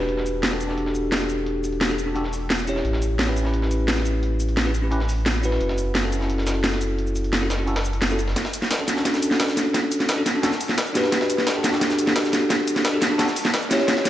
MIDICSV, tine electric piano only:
0, 0, Header, 1, 2, 480
1, 0, Start_track
1, 0, Tempo, 344828
1, 124, Time_signature, 4, 2, 24, 8
1, 19622, End_track
2, 0, Start_track
2, 0, Title_t, "Tine electric piano"
2, 0, Program_c, 0, 4
2, 0, Note_on_c, 0, 62, 74
2, 0, Note_on_c, 0, 66, 67
2, 0, Note_on_c, 0, 67, 68
2, 0, Note_on_c, 0, 71, 84
2, 680, Note_off_c, 0, 62, 0
2, 689, Note_off_c, 0, 66, 0
2, 698, Note_off_c, 0, 67, 0
2, 708, Note_off_c, 0, 71, 0
2, 709, Note_on_c, 0, 62, 64
2, 719, Note_on_c, 0, 66, 62
2, 728, Note_on_c, 0, 67, 60
2, 736, Note_on_c, 0, 69, 73
2, 918, Note_off_c, 0, 62, 0
2, 933, Note_off_c, 0, 66, 0
2, 934, Note_on_c, 0, 62, 67
2, 937, Note_off_c, 0, 67, 0
2, 941, Note_off_c, 0, 69, 0
2, 953, Note_on_c, 0, 66, 62
2, 969, Note_on_c, 0, 67, 62
2, 989, Note_on_c, 0, 69, 75
2, 2600, Note_off_c, 0, 62, 0
2, 2610, Note_off_c, 0, 66, 0
2, 2618, Note_off_c, 0, 67, 0
2, 2626, Note_on_c, 0, 62, 66
2, 2628, Note_off_c, 0, 69, 0
2, 2636, Note_on_c, 0, 66, 59
2, 2645, Note_on_c, 0, 67, 62
2, 2655, Note_on_c, 0, 69, 73
2, 2703, Note_off_c, 0, 62, 0
2, 2707, Note_off_c, 0, 66, 0
2, 2712, Note_off_c, 0, 67, 0
2, 2717, Note_off_c, 0, 69, 0
2, 2868, Note_on_c, 0, 62, 68
2, 2874, Note_on_c, 0, 66, 63
2, 2885, Note_on_c, 0, 67, 63
2, 2894, Note_on_c, 0, 69, 76
2, 2966, Note_off_c, 0, 62, 0
2, 2970, Note_off_c, 0, 66, 0
2, 2975, Note_off_c, 0, 67, 0
2, 2979, Note_off_c, 0, 69, 0
2, 2986, Note_on_c, 0, 62, 87
2, 2995, Note_on_c, 0, 66, 78
2, 3004, Note_on_c, 0, 67, 80
2, 3014, Note_on_c, 0, 69, 97
2, 3104, Note_off_c, 0, 62, 0
2, 3108, Note_off_c, 0, 66, 0
2, 3113, Note_off_c, 0, 67, 0
2, 3118, Note_off_c, 0, 69, 0
2, 3692, Note_on_c, 0, 61, 74
2, 3711, Note_on_c, 0, 64, 68
2, 3729, Note_on_c, 0, 67, 68
2, 3746, Note_on_c, 0, 73, 81
2, 4519, Note_off_c, 0, 61, 0
2, 4529, Note_off_c, 0, 64, 0
2, 4538, Note_off_c, 0, 67, 0
2, 4546, Note_off_c, 0, 73, 0
2, 4551, Note_on_c, 0, 61, 65
2, 4559, Note_on_c, 0, 64, 59
2, 4569, Note_on_c, 0, 67, 61
2, 4577, Note_on_c, 0, 71, 73
2, 4758, Note_off_c, 0, 61, 0
2, 4772, Note_off_c, 0, 64, 0
2, 4775, Note_on_c, 0, 61, 68
2, 4778, Note_off_c, 0, 67, 0
2, 4781, Note_off_c, 0, 71, 0
2, 4793, Note_on_c, 0, 64, 60
2, 4811, Note_on_c, 0, 67, 60
2, 4827, Note_on_c, 0, 71, 73
2, 6440, Note_off_c, 0, 61, 0
2, 6449, Note_off_c, 0, 64, 0
2, 6458, Note_off_c, 0, 67, 0
2, 6467, Note_off_c, 0, 71, 0
2, 6468, Note_on_c, 0, 61, 66
2, 6478, Note_on_c, 0, 64, 61
2, 6486, Note_on_c, 0, 67, 61
2, 6495, Note_on_c, 0, 71, 75
2, 6544, Note_off_c, 0, 61, 0
2, 6548, Note_off_c, 0, 64, 0
2, 6552, Note_off_c, 0, 67, 0
2, 6557, Note_off_c, 0, 71, 0
2, 6709, Note_on_c, 0, 61, 67
2, 6717, Note_on_c, 0, 64, 63
2, 6727, Note_on_c, 0, 67, 65
2, 6737, Note_on_c, 0, 71, 76
2, 6807, Note_off_c, 0, 61, 0
2, 6811, Note_off_c, 0, 64, 0
2, 6816, Note_off_c, 0, 67, 0
2, 6821, Note_off_c, 0, 71, 0
2, 6830, Note_on_c, 0, 61, 88
2, 6838, Note_on_c, 0, 64, 83
2, 6846, Note_on_c, 0, 67, 83
2, 6856, Note_on_c, 0, 71, 98
2, 6946, Note_off_c, 0, 61, 0
2, 6950, Note_off_c, 0, 64, 0
2, 6954, Note_off_c, 0, 67, 0
2, 6959, Note_off_c, 0, 71, 0
2, 7537, Note_on_c, 0, 61, 76
2, 7556, Note_on_c, 0, 64, 69
2, 7572, Note_on_c, 0, 66, 70
2, 7591, Note_on_c, 0, 71, 84
2, 8362, Note_off_c, 0, 61, 0
2, 8371, Note_off_c, 0, 64, 0
2, 8379, Note_off_c, 0, 66, 0
2, 8388, Note_on_c, 0, 61, 66
2, 8389, Note_off_c, 0, 71, 0
2, 8398, Note_on_c, 0, 64, 61
2, 8407, Note_on_c, 0, 66, 61
2, 8415, Note_on_c, 0, 69, 76
2, 8599, Note_off_c, 0, 61, 0
2, 8612, Note_off_c, 0, 64, 0
2, 8616, Note_off_c, 0, 66, 0
2, 8616, Note_on_c, 0, 61, 67
2, 8621, Note_off_c, 0, 69, 0
2, 8635, Note_on_c, 0, 64, 62
2, 8651, Note_on_c, 0, 66, 63
2, 8670, Note_on_c, 0, 69, 75
2, 10281, Note_off_c, 0, 61, 0
2, 10291, Note_off_c, 0, 64, 0
2, 10299, Note_off_c, 0, 66, 0
2, 10308, Note_off_c, 0, 69, 0
2, 10308, Note_on_c, 0, 61, 69
2, 10317, Note_on_c, 0, 64, 63
2, 10326, Note_on_c, 0, 66, 63
2, 10335, Note_on_c, 0, 69, 74
2, 10384, Note_off_c, 0, 61, 0
2, 10388, Note_off_c, 0, 64, 0
2, 10393, Note_off_c, 0, 66, 0
2, 10397, Note_off_c, 0, 69, 0
2, 10549, Note_on_c, 0, 61, 69
2, 10558, Note_on_c, 0, 64, 65
2, 10567, Note_on_c, 0, 66, 67
2, 10575, Note_on_c, 0, 69, 77
2, 10647, Note_off_c, 0, 61, 0
2, 10652, Note_off_c, 0, 64, 0
2, 10656, Note_off_c, 0, 66, 0
2, 10660, Note_off_c, 0, 69, 0
2, 10664, Note_on_c, 0, 61, 89
2, 10673, Note_on_c, 0, 64, 82
2, 10682, Note_on_c, 0, 66, 81
2, 10691, Note_on_c, 0, 69, 101
2, 10783, Note_off_c, 0, 61, 0
2, 10787, Note_off_c, 0, 64, 0
2, 10792, Note_off_c, 0, 66, 0
2, 10796, Note_off_c, 0, 69, 0
2, 11265, Note_on_c, 0, 61, 77
2, 11274, Note_on_c, 0, 64, 70
2, 11283, Note_on_c, 0, 66, 72
2, 11294, Note_on_c, 0, 69, 88
2, 11383, Note_off_c, 0, 61, 0
2, 11387, Note_off_c, 0, 64, 0
2, 11392, Note_off_c, 0, 66, 0
2, 11397, Note_off_c, 0, 69, 0
2, 12226, Note_on_c, 0, 61, 69
2, 12236, Note_on_c, 0, 62, 63
2, 12244, Note_on_c, 0, 66, 64
2, 12254, Note_on_c, 0, 69, 75
2, 12437, Note_off_c, 0, 61, 0
2, 12451, Note_off_c, 0, 62, 0
2, 12454, Note_on_c, 0, 61, 70
2, 12455, Note_off_c, 0, 66, 0
2, 12460, Note_off_c, 0, 69, 0
2, 12474, Note_on_c, 0, 62, 64
2, 12491, Note_on_c, 0, 66, 65
2, 12509, Note_on_c, 0, 69, 76
2, 14120, Note_off_c, 0, 61, 0
2, 14130, Note_off_c, 0, 62, 0
2, 14138, Note_off_c, 0, 66, 0
2, 14147, Note_on_c, 0, 61, 71
2, 14148, Note_off_c, 0, 69, 0
2, 14156, Note_on_c, 0, 62, 65
2, 14167, Note_on_c, 0, 66, 65
2, 14175, Note_on_c, 0, 69, 78
2, 14223, Note_off_c, 0, 61, 0
2, 14227, Note_off_c, 0, 62, 0
2, 14233, Note_off_c, 0, 66, 0
2, 14237, Note_off_c, 0, 69, 0
2, 14388, Note_on_c, 0, 61, 71
2, 14398, Note_on_c, 0, 62, 66
2, 14407, Note_on_c, 0, 66, 67
2, 14415, Note_on_c, 0, 69, 79
2, 14487, Note_off_c, 0, 61, 0
2, 14492, Note_off_c, 0, 62, 0
2, 14496, Note_off_c, 0, 66, 0
2, 14500, Note_off_c, 0, 69, 0
2, 14507, Note_on_c, 0, 61, 95
2, 14516, Note_on_c, 0, 62, 84
2, 14526, Note_on_c, 0, 66, 85
2, 14535, Note_on_c, 0, 69, 106
2, 14624, Note_off_c, 0, 61, 0
2, 14629, Note_off_c, 0, 62, 0
2, 14634, Note_off_c, 0, 66, 0
2, 14638, Note_off_c, 0, 69, 0
2, 15215, Note_on_c, 0, 62, 81
2, 15234, Note_on_c, 0, 66, 73
2, 15252, Note_on_c, 0, 67, 72
2, 15270, Note_on_c, 0, 71, 86
2, 16041, Note_off_c, 0, 62, 0
2, 16050, Note_off_c, 0, 66, 0
2, 16059, Note_off_c, 0, 67, 0
2, 16068, Note_off_c, 0, 71, 0
2, 16069, Note_on_c, 0, 62, 72
2, 16079, Note_on_c, 0, 66, 66
2, 16088, Note_on_c, 0, 67, 65
2, 16097, Note_on_c, 0, 69, 79
2, 16281, Note_off_c, 0, 62, 0
2, 16293, Note_off_c, 0, 66, 0
2, 16297, Note_off_c, 0, 67, 0
2, 16298, Note_on_c, 0, 62, 70
2, 16302, Note_off_c, 0, 69, 0
2, 16317, Note_on_c, 0, 66, 66
2, 16333, Note_on_c, 0, 67, 67
2, 16353, Note_on_c, 0, 69, 80
2, 17962, Note_off_c, 0, 62, 0
2, 17971, Note_off_c, 0, 66, 0
2, 17979, Note_off_c, 0, 67, 0
2, 17988, Note_on_c, 0, 62, 70
2, 17989, Note_off_c, 0, 69, 0
2, 17999, Note_on_c, 0, 66, 66
2, 18007, Note_on_c, 0, 67, 66
2, 18016, Note_on_c, 0, 69, 80
2, 18064, Note_off_c, 0, 62, 0
2, 18069, Note_off_c, 0, 66, 0
2, 18073, Note_off_c, 0, 67, 0
2, 18078, Note_off_c, 0, 69, 0
2, 18232, Note_on_c, 0, 62, 74
2, 18240, Note_on_c, 0, 66, 68
2, 18249, Note_on_c, 0, 67, 68
2, 18258, Note_on_c, 0, 69, 80
2, 18329, Note_off_c, 0, 62, 0
2, 18333, Note_off_c, 0, 66, 0
2, 18337, Note_off_c, 0, 67, 0
2, 18342, Note_off_c, 0, 69, 0
2, 18345, Note_on_c, 0, 62, 94
2, 18355, Note_on_c, 0, 66, 89
2, 18365, Note_on_c, 0, 67, 87
2, 18373, Note_on_c, 0, 69, 103
2, 18463, Note_off_c, 0, 62, 0
2, 18468, Note_off_c, 0, 66, 0
2, 18473, Note_off_c, 0, 67, 0
2, 18477, Note_off_c, 0, 69, 0
2, 19054, Note_on_c, 0, 61, 82
2, 19071, Note_on_c, 0, 64, 74
2, 19091, Note_on_c, 0, 67, 73
2, 19107, Note_on_c, 0, 73, 89
2, 19622, Note_off_c, 0, 61, 0
2, 19622, Note_off_c, 0, 64, 0
2, 19622, Note_off_c, 0, 67, 0
2, 19622, Note_off_c, 0, 73, 0
2, 19622, End_track
0, 0, End_of_file